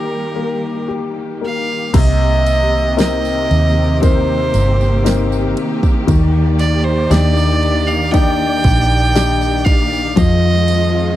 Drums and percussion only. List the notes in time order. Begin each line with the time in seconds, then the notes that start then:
1.94 kick, crash, ride, tambourine
2.46 ride, tambourine
2.99 snare, ride, tambourine
3.25 tambourine
3.51 ride
4.03 kick, ride, tambourine
4.54 ride, tambourine
4.81 tambourine
5.06 snare, ride, tambourine
5.32 tambourine
5.57 ride
5.83 kick, tambourine
6.08 kick, ride, tambourine
6.59 ride, tambourine
7.11 snare, ride, tambourine
7.37 tambourine
7.63 ride
7.88 tambourine
8.14 kick, ride, tambourine
8.64 kick, ride, tambourine
9.16 snare, ride, tambourine
9.41 tambourine
9.66 kick, ride
9.93 tambourine
10.17 kick, ride, tambourine
10.68 ride, tambourine